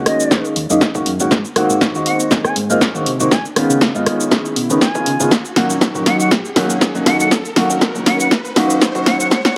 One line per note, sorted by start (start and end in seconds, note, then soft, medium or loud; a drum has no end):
0.00 0.29 D#3 medium
0.00 0.29 G#3 medium
0.00 0.29 A#3 medium
0.00 0.29 C#4 medium
0.00 0.29 F#4 medium
0.00 riser medium
0.06 0.45 D#5 medium
0.06 cross-stick medium
0.06 open hi-hat medium
0.20 shaker medium
0.31 0.54 D#3 medium
0.31 0.54 G#3 medium
0.31 0.55 A#3 medium
0.31 0.55 C#4 medium
0.31 0.55 G#4 medium
0.31 kick loud
0.31 snare medium
0.31 shaker medium
0.45 shaker soft
0.56 0.68 D#2 medium
0.56 open hi-hat loud
0.70 0.79 F#2 medium
0.70 0.83 D#3 medium
0.70 0.83 G#3 medium
0.70 0.83 A#3 medium
0.70 0.84 C#4 medium
0.70 0.84 D#4 loud
0.70 shaker medium
0.81 kick loud
0.81 snare medium
0.81 shaker medium
0.95 1.05 F#1 medium
0.95 1.08 D#3 medium
0.95 1.08 G#3 medium
0.95 1.09 A#3 medium
0.95 1.09 C#4 medium
0.95 1.09 F#4 medium
0.95 kick medium
0.95 shaker soft
1.06 1.18 F#2 medium
1.06 open hi-hat medium
1.20 1.30 F#1 medium
1.20 1.30 D#3 medium
1.20 1.30 G#3 medium
1.20 1.30 A#3 medium
1.20 1.30 C#4 medium
1.20 1.30 F#4 loud
1.20 shaker medium
1.31 1.43 G#2 medium
1.31 kick loud
1.31 snare medium
1.31 shaker medium
1.45 shaker soft
1.56 1.92 D#3 medium
1.56 1.92 G#3 medium
1.56 1.92 A#3 medium
1.56 1.92 C4 medium
1.56 1.92 F#4 loud
1.56 cross-stick medium
1.56 open hi-hat loud
1.70 1.90 G#1 medium
1.70 shaker medium
1.81 kick loud
1.81 snare medium
1.81 shaker medium
1.95 2.04 D#2 medium
1.95 2.29 D#3 medium
1.95 2.29 G#3 medium
1.95 2.29 A#3 medium
1.95 2.29 C4 medium
1.95 2.29 F#4 loud
1.95 shaker soft
2.06 2.17 F#5 medium
2.06 open hi-hat medium
2.20 shaker medium
2.31 2.43 G#1 loud
2.31 2.54 D#3 medium
2.31 2.54 G#3 medium
2.31 2.54 A#3 medium
2.31 2.55 G#4 medium
2.31 kick loud
2.31 snare medium
2.31 shaker medium
2.44 2.56 G#5 medium
2.44 cross-stick medium
2.44 shaker soft
2.56 2.68 G#2 loud
2.56 open hi-hat loud
2.69 2.79 G#1 loud
2.69 2.83 D#3 medium
2.69 2.83 G#3 medium
2.69 2.83 A#3 medium
2.69 2.83 C4 medium
2.69 2.84 F4 loud
2.69 shaker medium
2.81 kick loud
2.81 snare medium
2.81 shaker medium
2.94 3.04 D#2 medium
2.94 3.08 D#3 medium
2.94 3.08 G#3 medium
2.94 3.08 A#3 medium
2.94 3.08 C4 medium
2.94 3.09 F#4 medium
2.94 shaker soft
3.06 3.28 C3 loud
3.06 open hi-hat medium
3.19 3.30 D#3 medium
3.19 3.30 G#3 medium
3.19 3.30 A#3 medium
3.19 3.30 C4 medium
3.19 3.30 F#4 medium
3.19 shaker medium
3.31 3.43 C#2 medium
3.31 3.44 G#5 medium
3.31 kick loud
3.31 snare medium
3.31 shaker medium
3.45 shaker soft
3.56 3.92 D#3 loud
3.56 3.92 G#3 medium
3.56 3.92 B3 medium
3.56 3.92 C#4 medium
3.56 3.92 F4 loud
3.56 cross-stick medium
3.56 open hi-hat loud
3.70 3.90 C#3 medium
3.70 shaker medium
3.81 kick loud
3.81 snare medium
3.81 shaker medium
3.95 4.04 G#2 medium
3.95 4.29 D#3 medium
3.95 4.29 G#3 medium
3.95 4.29 B3 medium
3.95 4.29 C#4 medium
3.95 4.29 F4 loud
3.95 shaker soft
4.06 cross-stick medium
4.06 open hi-hat loud
4.20 shaker medium
4.31 4.54 D#3 medium
4.31 4.54 G#3 medium
4.31 4.54 B3 medium
4.31 4.55 C#4 medium
4.31 4.55 G#4 medium
4.31 kick loud
4.31 snare medium
4.31 shaker medium
4.45 shaker soft
4.56 4.68 B2 medium
4.56 open hi-hat loud
4.70 4.79 C#2 medium
4.70 4.83 D#3 medium
4.70 4.83 G#3 medium
4.70 4.83 B3 medium
4.70 4.84 C#4 medium
4.70 4.84 D#4 loud
4.70 shaker medium
4.81 5.31 G#5 medium
4.81 kick loud
4.81 snare medium
4.81 shaker medium
4.95 5.08 D#3 medium
4.95 5.08 G#3 medium
4.95 5.08 B3 medium
4.95 5.09 C#4 medium
4.95 5.09 F4 medium
4.95 kick medium
4.95 shaker soft
5.06 5.18 C#3 medium
5.06 open hi-hat medium
5.20 5.30 C#3 loud
5.20 5.30 D#3 medium
5.20 5.30 G#3 medium
5.20 5.30 B3 medium
5.20 5.30 C#4 medium
5.20 5.30 F4 medium
5.20 shaker medium
5.31 5.43 D#2 medium
5.31 kick loud
5.31 snare medium
5.31 shaker medium
5.45 shaker soft
5.56 5.92 D#3 medium
5.56 5.92 F#3 medium
5.56 5.92 A#3 medium
5.56 5.92 C#4 medium
5.56 5.92 F#4 loud
5.56 snare medium
5.56 open hi-hat loud
5.70 5.90 A#1 medium
5.70 shaker medium
5.81 kick loud
5.81 snare medium
5.81 shaker medium
5.94 6.04 A#1 medium
5.94 6.28 D#3 medium
5.94 6.28 F#3 medium
5.94 6.29 A#3 medium
5.94 6.29 C#4 medium
5.94 6.29 F#4 medium
5.94 shaker soft
6.06 6.17 F#5 medium
6.06 snare medium
6.06 open hi-hat medium
6.20 6.30 F#5 medium
6.20 shaker medium
6.31 6.43 A#1 medium
6.31 kick loud
6.31 snare medium
6.31 shaker medium
6.45 shaker soft
6.56 6.68 D#2 loud
6.56 6.92 D#3 medium
6.56 6.92 F#3 medium
6.56 6.92 A#3 medium
6.56 6.92 C#4 medium
6.56 6.92 F#4 loud
6.56 snare medium
6.56 open hi-hat loud
6.70 6.79 A#1 loud
6.70 shaker medium
6.81 kick loud
6.81 snare medium
6.81 shaker medium
6.95 7.04 A#1 medium
6.95 7.29 D#3 medium
6.95 7.29 F#3 medium
6.95 7.29 A#3 medium
6.95 7.29 C#4 medium
6.95 7.29 F#4 medium
6.95 shaker soft
7.06 7.28 F#2 loud
7.06 7.17 F#5 medium
7.06 snare medium
7.06 open hi-hat medium
7.20 7.30 F#5 medium
7.20 shaker medium
7.31 7.43 F#2 medium
7.31 kick loud
7.31 snare medium
7.31 shaker medium
7.45 shaker soft
7.56 7.92 D#3 medium
7.56 7.92 F#3 medium
7.56 7.92 A#3 medium
7.56 7.92 C#4 medium
7.56 7.92 F#4 loud
7.56 snare medium
7.56 open hi-hat loud
7.70 7.91 F#1 medium
7.70 shaker medium
7.81 kick loud
7.81 snare medium
7.81 shaker medium
7.94 8.04 C#2 medium
7.94 8.28 D#3 medium
7.94 8.29 F#3 medium
7.94 8.29 A#3 medium
7.94 8.29 C#4 medium
7.94 8.29 F#4 medium
7.94 shaker soft
8.06 8.17 F#5 medium
8.06 snare medium
8.06 open hi-hat medium
8.20 8.30 F#5 medium
8.20 shaker medium
8.31 kick loud
8.31 snare medium
8.31 shaker medium
8.45 shaker soft
8.56 8.68 D#2 medium
8.56 8.92 D#3 medium
8.56 8.92 F#3 medium
8.56 8.92 A#3 medium
8.56 8.92 C#4 medium
8.56 8.92 F#4 loud
8.56 snare medium
8.56 open hi-hat loud
8.70 8.80 F#2 medium
8.70 shaker medium
8.81 kick loud
8.81 snare medium
8.81 shaker medium
8.95 9.05 F#1 medium
8.95 9.29 D#3 medium
8.95 9.29 F#3 medium
8.95 9.29 A#3 medium
8.95 9.29 C#4 medium
8.95 9.29 F#4 loud
8.95 kick medium
8.95 shaker soft
9.06 9.18 F#2 medium
9.06 9.17 F#5 medium
9.06 snare medium
9.06 open hi-hat medium
9.20 9.29 F#1 medium
9.20 9.30 F#5 medium
9.20 shaker medium
9.31 9.43 G#2 loud
9.31 9.42 F#5 medium
9.31 kick loud
9.31 snare medium
9.31 shaker medium
9.45 9.55 F#5 medium
9.45 snare medium
9.45 shaker soft